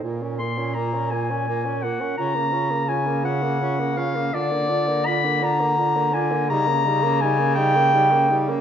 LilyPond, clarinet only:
\new Staff \with { instrumentName = "Clarinet" } { \time 6/8 \key bes \minor \tempo 4. = 56 r8 c'''8 bes''8 aes''4 ges''8 | bes''4 aes''8 ges''4 f''8 | \key bes \phrygian d''4 ces'''8 bes''4 aes''8 | bes''4 aes''8 g''4 r8 | }